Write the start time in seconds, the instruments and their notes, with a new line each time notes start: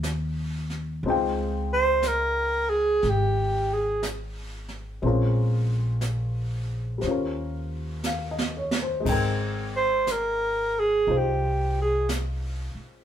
Already playing: upright bass D#2, grand piano A#3 C4 D#4 F4 F#4
0.03 brush sweep, snare, hi-hat pedal
0.70 snare
1.02 upright bass C#2, grand piano G#3 C4, brush sweep
1.08 grand piano D#4 F4 G5
1.73 alto saxophone C5
2.02 brush sweep, snare, hi-hat pedal
2.07 alto saxophone A#4
2.69 alto saxophone G#4
3.02 upright bass G#1, brush sweep, snare
3.10 alto saxophone G4
3.73 alto saxophone G#4
4.03 brush sweep, snare, hi-hat pedal
4.68 snare
5.01 upright bass A#1, grand piano G#3 C4, brush sweep
5.05 grand piano C#4 F4 A#4
6.01 brush sweep, snare, hi-hat pedal
6.98 grand piano G3 C5, brush sweep, snare
7.03 upright bass D#2, grand piano C#4
7.07 grand piano F4 A#4
8.04 grand piano F5, snare, hi-hat pedal
8.31 grand piano D#5
8.38 snare
8.57 grand piano C#5
8.71 snare
8.82 grand piano C5
9.00 grand piano G#3 C4
9.05 upright bass G#1, grand piano D#4 G5, brush sweep, kick, snare, crash
9.12 grand piano A#4
9.76 alto saxophone C5
10.07 brush sweep, snare, hi-hat pedal
10.11 alto saxophone A#4
10.79 alto saxophone G#4
11.07 upright bass C2, grand piano D#4 F4 C5, brush sweep
11.18 alto saxophone G4
11.82 alto saxophone G#4
12.09 brush sweep, snare, hi-hat pedal
12.75 muted upright bass stroke